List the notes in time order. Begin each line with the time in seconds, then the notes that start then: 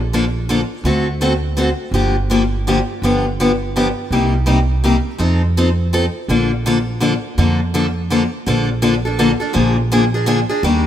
Already playing: A#1
0.13 D3 F3 A#3 D4 A4
0.49 D3 F3 A#3 D4 A4
0.84 D2 D3 A3 C4 F#4 A4
1.21 D3 A3 C4 F#4 A4
1.57 D3 A3 C4 F#4 A4
1.91 G1 D3 F3 A#3 D4 G4
2.30 D3 F3 A#3 D4 G4
2.67 D3 F3 A#3 D4 G4
3.02 G1 D3 F3 B3 D4 G4
3.40 D3 F3 B3 D4 G4
3.76 D3 F3 B3 D4 G4
4.11 C2 C3 G3 A#3 D#4 G4
4.46 C3 G3 A#3 D#4 G4
4.84 C3 G3 A#3 D#4 G4
5.18 F2 F3 C4 D#4 A4
5.57 F3 C4 D#4 A4
5.93 F3 C4 D#4 A4
6.28 A#1 D3 F3 A#3 D4 A4
6.66 D3 F3 A#3 D4 A4
7.00 D3 F3 A#3 D4 A4
7.38 F2 D3 F3 A#3 D4 A4
7.74 D3 F3 A#3 D4 A4
8.10 D3 F3 A#3 D4 A4
8.46 A#1 D3 F3 A#3 D4 A4
8.82 D3 F3 A#3 D4 A4
9.05 A#3 D4 A4
9.19 D3 F3 A#3 D4 A4
9.40 A#3 D4 A4
9.53 A#1 D3 F3 A#3 D4 G#4
9.92 D3 F3 A#3 D4 G#4
10.14 A#3 D4 G#4
10.26 D3 F3 A#3 D4 G#4
10.49 A#3 D4 G#4
10.63 D#2 D#3 G3 A#3 D4 G4